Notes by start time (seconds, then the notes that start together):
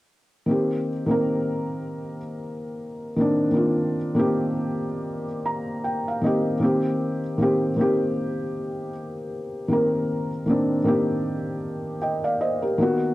0.46 D#3 A#3 C4
0.51 G4
1.06 D#3 A#3 C4
1.11 A#4
3.16 D#3 A#3 C4
3.21 D4
3.51 D#3 A#3 C4
3.56 F4
4.15 D#3 A#3 C4
4.19 G4
5.46 A#5
5.84 G5
6.08 F5
6.22 D#3 A#3 C4 D#5
6.26 G4
6.59 D#3 A#3 C4
6.64 G4
7.38 D#3 A#3 C4
7.42 G4
7.76 D#3 A#3 C4
7.81 G4
9.68 D#3 A#3 C4
9.73 A#4
10.46 D#3 A#3 C4
10.51 D4
10.84 D#3 A#3 C4
10.88 G4
12.02 D#5 G5
12.24 D5 F5
12.41 C5 D#5
12.62 G4 A#4
12.78 D#3 A#3 B3
12.83 F#4